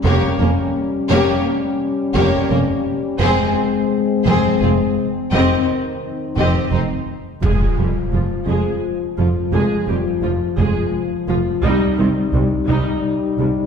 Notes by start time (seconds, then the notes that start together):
Already playing: G3 C#4
0.04 F1 F2 A#3 G4 C#5
0.39 F1 F2 A#3 C#4 A#4
1.10 F1 F2 A#3 G4 C#5
2.14 F1 F2 A#3 G4 C#5
2.49 F1 F2 A#3 C#4 A#4
3.19 F1 F2 G#3 C4 G#4 C5
4.25 F1 F2 C4 G#4 C5
4.60 F1 F2 C4 F4 G#4
5.31 F1 F2 D#3 C4 G4 D#5
6.37 F1 F2 C4 G4 D#5
6.72 F1 F2 C4 D#4 C5
7.42 F1 F2 F3 G#3 F4 G#4, impact
7.77 F1 F2 G3 G4
8.12 F1 F2 F3 F4
8.47 F1 F2 G#3 G#4
9.18 F1 F2 F3 F4
9.52 F1 F2 G#3 G#4
9.88 F1 F2 G3 G4
10.22 F1 F2 F3 F4
10.58 F1 F2 G#3 G#4
11.28 F1 F2 F3 F4
11.62 C2 G3 D#4
11.98 C2 D#3 C4
12.33 C2 C3 G3
12.68 C2 G3 D#4
13.38 C2 C3 G3